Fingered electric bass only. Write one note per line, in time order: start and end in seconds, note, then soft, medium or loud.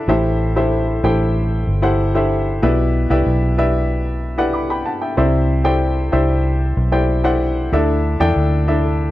0.08 1.00 A1 loud
1.04 1.63 A1 loud
1.67 2.59 G1 medium
2.63 3.07 B1 loud
3.10 3.25 C2 medium
3.26 4.82 B1 loud
5.18 6.09 C2 loud
6.13 6.73 C2 loud
6.77 7.69 B1 medium
7.72 8.17 D2 loud
8.20 8.35 E2 medium
8.36 9.11 D2 medium